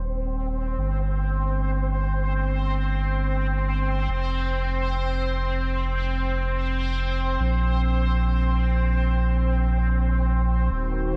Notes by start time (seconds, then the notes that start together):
Already playing: D#1 C4 C5
0.78 G1
4.09 F1
7.40 A#1
10.71 D#1 D#3 A#3 D#4 F#4 A#4 C5